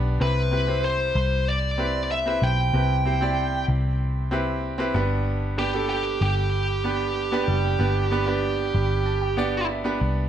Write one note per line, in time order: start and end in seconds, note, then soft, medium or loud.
0.00 0.18 B1 medium
0.00 0.22 B3 medium
0.00 0.22 D4 medium
0.00 0.21 G4 medium
0.00 0.21 B4 medium
0.20 1.11 C2 loud
0.20 1.12 C3 medium
0.20 0.48 C4 medium
0.20 0.48 E4 medium
0.20 0.49 G4 medium
0.20 0.49 B4 medium
0.20 0.84 B4 medium
0.51 0.66 C4 medium
0.51 0.66 E4 medium
0.51 0.66 G4 medium
0.51 0.66 B4 medium
0.67 1.65 C4 medium
0.67 1.65 E4 medium
0.67 1.66 G4 medium
0.67 1.66 C5 medium
0.85 1.49 C5 medium
1.15 2.38 C2 loud
1.48 2.11 D5 medium
1.78 2.20 C4 medium
1.78 2.20 E4 medium
1.78 2.21 G4 medium
1.78 2.21 B4 medium
2.12 2.44 E5 loud
2.26 2.68 C4 medium
2.26 2.68 E4 medium
2.26 2.68 G4 medium
2.26 2.69 B4 medium
2.42 2.71 B1 medium
2.42 3.65 G5 loud
2.73 3.64 C2 loud
2.73 3.65 C3 medium
2.73 3.01 C4 medium
2.73 3.02 E4 medium
2.73 3.02 G4 medium
2.73 3.02 B4 medium
3.05 3.19 C4 medium
3.05 3.19 E4 medium
3.05 3.20 G4 medium
3.05 3.20 C5 medium
3.21 4.19 C4 medium
3.21 4.19 E4 medium
3.21 4.19 G4 medium
3.21 4.19 D5 medium
3.68 4.91 C2 loud
4.31 4.73 C4 medium
4.31 4.73 E4 medium
4.31 4.74 G4 medium
4.31 4.74 B4 loud
4.78 4.94 C4 medium
4.78 4.95 E4 medium
4.78 4.94 G4 medium
4.78 4.94 B4 loud
4.94 6.17 G1 loud
4.94 5.86 G2 medium
4.94 5.50 B3 medium
4.94 5.51 D4 medium
4.94 5.51 G4 medium
4.94 5.51 B4 loud
5.57 5.72 B3 medium
5.57 5.72 D4 medium
5.57 5.72 G4 medium
5.57 5.89 G4 loud
5.57 5.72 B4 medium
5.73 6.71 B3 medium
5.73 6.72 D4 medium
5.73 6.72 G4 medium
5.73 6.72 A4 medium
5.90 6.21 G4 loud
6.21 7.44 G1 loud
6.21 9.66 G4 medium
6.84 7.26 B3 medium
6.84 7.26 D4 medium
6.84 7.27 G4 medium
6.84 7.27 B4 medium
7.32 7.74 B3 medium
7.32 7.74 D4 medium
7.32 7.74 G4 medium
7.32 7.75 B4 loud
7.48 7.77 F#1 medium
7.48 8.39 G3 medium
7.79 8.71 G1 medium
7.79 8.07 B3 medium
7.79 8.07 D4 medium
7.79 8.08 G4 medium
7.79 8.08 B4 medium
8.11 8.24 B3 medium
8.11 8.25 D4 medium
8.11 8.26 G4 medium
8.11 8.26 B4 loud
8.26 9.24 B3 medium
8.26 9.25 D4 medium
8.26 9.25 G4 medium
8.26 9.25 B4 medium
8.74 9.97 G1 loud
8.74 9.04 B5 medium
9.06 9.21 A5 medium
9.22 9.37 G5 medium
9.37 9.79 B3 medium
9.37 9.79 D4 medium
9.37 9.80 G4 medium
9.37 9.80 D5 loud
9.37 9.67 F#5 medium
9.69 9.99 E5 medium
9.84 10.27 B3 medium
9.84 10.27 D4 medium
9.84 10.27 G4 medium
9.84 10.27 B4 loud
10.01 10.29 C2 loud
10.01 10.29 D5 medium